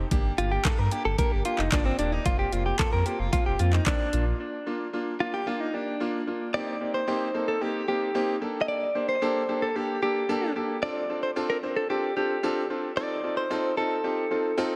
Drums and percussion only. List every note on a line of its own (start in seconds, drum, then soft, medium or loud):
0.11 kick loud
0.11 closed hi-hat medium
0.38 closed hi-hat soft
0.65 kick loud
0.65 clap loud
0.65 closed hi-hat medium
0.91 closed hi-hat medium
1.18 kick loud
1.18 closed hi-hat medium
1.45 closed hi-hat medium
1.59 clap medium
1.72 kick loud
1.72 clap loud
1.72 closed hi-hat medium
1.99 closed hi-hat medium
2.26 kick loud
2.26 closed hi-hat medium
2.52 closed hi-hat soft
2.79 kick loud
2.79 clap loud
2.79 closed hi-hat medium
3.06 closed hi-hat soft
3.33 kick loud
3.33 closed hi-hat medium
3.59 closed hi-hat medium
3.73 clap medium
3.86 kick loud
3.86 clap loud
3.86 closed hi-hat medium
4.13 closed hi-hat medium